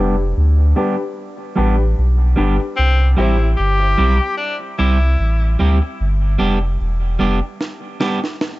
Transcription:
Already playing: F1 G3 B3 D4 G4 B4
0.37 D2
0.75 G3 B3 D4 G4 B4
1.56 A1 G3 B3 D4 G4 B4
1.98 B1
2.36 G1 G3 B3 D4 G4 B4
2.60 muted clean electric guitar stroke
2.76 C2 C4
3.17 A1 G3 C4 E4 G4 C5
3.57 G1 G4
3.98 B1 G3 C4 E4 G4
4.37 D4
4.78 C2 G3 C4 E4 G4
5.20 A1
5.59 D2 G3 C4 E4 G4
5.82 muted clean electric guitar stroke
6.01 G1
6.38 F1 G3 B3 D4 G4
6.81 E1
7.19 F1 G3 B3 D4 G4
7.61 snare
8.00 G3 B3 D4 G4, snare
8.24 snare
8.41 snare

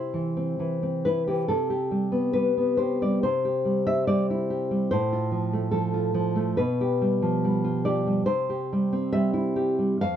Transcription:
Already playing: C3 E4 C5
0.14 E3
0.37 C4
0.60 E3
0.83 C4
1.05 E4 B4
1.27 E3 G4
1.48 C3 A4
1.70 G4
1.91 G3
2.12 B3
2.33 G3 B4
2.57 B3
2.77 G4 C5
3.02 G3 D5
3.23 C3 C5
3.45 G4
3.65 G3
3.87 C4 E5
4.07 G3 D5
4.30 E4
4.50 G4
4.71 G3
4.91 A2 C5
5.13 F4
5.32 F3
5.53 A3
5.71 F3 A4
5.94 F4
6.14 F3
6.36 A3
6.57 B2 B4
6.81 G4
7.01 G3
7.22 F3
7.44 G3
7.64 F4
7.85 G4 D5
8.07 G3
8.26 C3 C5
8.49 G4
8.73 G3
8.93 C4
9.13 G3 E5
9.33 E4
9.56 G4
9.79 G3
10.01 F2 F5

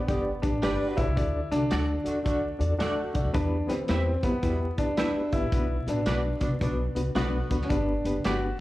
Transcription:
Already playing: B3
0.07 G1 D3 B3 D4 G4 B4 D5, kick, closed hi-hat
0.42 A1 D4 G4 B4 D5, kick, closed hi-hat
0.62 G1 G3 D4 G4 B4 D5, snare, closed hi-hat
0.87 F#4
0.96 B1 D4 E4 G4 B4 D5, kick, closed hi-hat
1.07 C2
1.15 D2 D3 D4 F#4 A4 D5, kick, closed hi-hat
1.51 C2 D4 F#4 A4 D5, snare, closed hi-hat
1.71 D2 F#3 D4 F#4 A4 D5, snare, closed hi-hat
2.04 E2 D3 A3 D4 F#4 A4 D5, closed hi-hat
2.24 D2 D3 A3 D4 F#4 A4 D5, kick, closed hi-hat
2.59 E2 D4 F#4 A4 D5, closed hi-hat
2.78 D2 D3 A3 D4 F#4 A4 D5, snare, closed hi-hat
3.14 C2 D4 F#4 A4 D5, kick, closed hi-hat
3.24 D2
3.33 E2 E3 B3 D4 E4 G4 B4, kick, closed hi-hat
3.67 D2 B3 C4 E4 G4 B4, snare, closed hi-hat
3.87 E2 B2 G3 B3 C4 E4 G4 B4 E5, snare, closed hi-hat
4.14 C4
4.22 F#2 B2 G3 B3 E4 G4 B4, kick, closed hi-hat
4.42 E2 B2 G3 B3 E4 G4 B4, kick, closed hi-hat
4.77 F#2 B3 D4 E4 G4 B4, kick, closed hi-hat
4.97 E2 B2 G3 B3 D4 E4 G4 B4 E5, snare, closed hi-hat
5.32 G1 B3 E4 G4 B4, kick, closed hi-hat
5.42 A1
5.52 B1 B2 B3 D4 F#4 B4, kick, closed hi-hat
5.86 A1 B3 D4 F#4 B4, snare, closed hi-hat
6.06 B1 B2 F#3 B3 D4 F#4 B4 D5, snare, closed hi-hat
6.40 C2 B2 F#3 B3 D4 F#4 B4, kick, closed hi-hat
6.61 B1 B2 F#3 B3 D4 F#4 B4, kick, closed hi-hat
6.95 C2 B3 D4 F#4 B4, closed hi-hat
7.15 B1 D3 B3 D4 F#4 B4 D5, snare, closed hi-hat
7.50 D2 B3 D4 F#4 B4, kick, closed hi-hat
7.61 C#4, snare
7.69 G1 G2 B3 D4 G4 B4, kick, closed hi-hat
8.05 F#1 B3 D4 G4 B4, closed hi-hat
8.23 G1 B2 G3 B3 D4 F#4 G4 B4 D5, snare, closed hi-hat

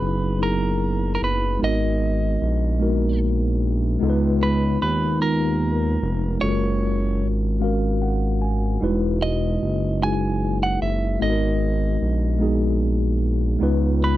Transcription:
Already playing: F#3 B3 D#4 E4 G#4 B4
0.02 F#1
0.38 F#3 B3 D#4 E4
0.42 G#4 A#4
1.15 A#4
1.22 F#1 B4
1.59 G#1 G#3 B3 D#4 F#4 A#4
1.64 D#5
2.42 A#1
2.79 G#3 A#3 D#4 F#4 A#4
2.87 B3
3.99 C#2 G#3 B3 D#4 F4 A4
4.10 B4
4.43 B4
4.82 D#2 B4
5.20 G#3 B3 D#4 F4 A#4
6.02 F1
6.39 F#1 G#3 C#4 F4 F#4 A4 C#5
6.49 A#4
7.22 G#1
7.60 G#3 C#4 F#4 A#4 F5
8.02 F#5
8.42 G#5
8.80 E1 G3 D#4 E4 F#4 B4
8.86 G#3
9.22 D#5
9.62 F#1
10.01 G#3 D#4 E4 F#4 G#5
10.05 G#4
10.63 F#5
10.82 F#1 E5
11.19 G#1 G#3 B3 D#4 F#4 A4 D#5
11.30 A#4
12.02 A#1
12.39 G#3 B3 D#4 F#4 G#4
13.59 C#2 G#3 B3 D#4 F4 B4
14.04 B4

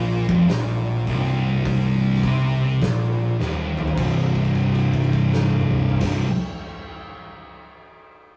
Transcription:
Already playing: A#1 A#2
0.28 F1 F2, kick
0.49 A#1 A#2, snare, open hi-hat
1.07 C1 C2, kick, open hi-hat
1.65 kick, open hi-hat
2.15 snare
2.23 C2 C3, kick, open hi-hat
2.81 A#1 A#2, kick, snare, open hi-hat
3.40 D#1 D#2, snare
3.77 mid tom
3.88 floor tom
3.97 C1 C2 G2 C3, kick, crash
4.35 kick, crash
4.45 crash
4.55 kick, crash
4.75 crash
4.94 kick, crash
5.04 crash
5.13 kick, crash
5.34 snare
5.50 high tom
5.61 mid tom
5.71 mid tom
5.90 floor tom
6.00 C1 C2 G2 C3, kick, snare, crash

